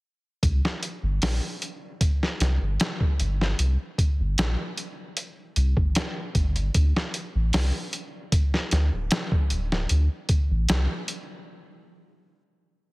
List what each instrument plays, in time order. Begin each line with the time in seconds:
0.43 sub bass C2, kick, closed hi-hat
0.65 snare
0.83 closed hi-hat
1.03 sub bass G1
1.22 sub bass A#1, snare, open hi-hat
1.62 closed hi-hat
2.01 kick, closed hi-hat
2.23 snare
2.40 sub bass C2, snare, closed hi-hat
2.61 sub bass G1
2.80 snare, closed hi-hat
3.00 kick
3.20 sub bass G1, closed hi-hat
3.41 snare
3.59 sub bass C2, closed hi-hat
3.98 kick, closed hi-hat
4.20 sub bass G1
4.38 sub bass A#1, snare, closed hi-hat
4.78 closed hi-hat
5.17 closed hi-hat
5.56 sub bass C2, closed hi-hat
5.77 sub bass G1, kick
5.95 snare, closed hi-hat
6.35 sub bass G1, kick, closed hi-hat
6.56 closed hi-hat
6.74 sub bass D2, kick, closed hi-hat
6.96 snare
7.14 closed hi-hat
7.35 sub bass A1
7.53 sub bass C2, snare, open hi-hat
7.93 closed hi-hat
8.32 kick, closed hi-hat
8.54 snare
8.71 sub bass D2, snare, closed hi-hat
8.93 sub bass D1
9.11 snare, closed hi-hat
9.32 kick
9.50 sub bass D1, closed hi-hat
9.72 snare
9.89 sub bass D2, closed hi-hat
10.29 kick, closed hi-hat
10.50 sub bass A1
10.69 sub bass C2, snare, closed hi-hat
11.08 closed hi-hat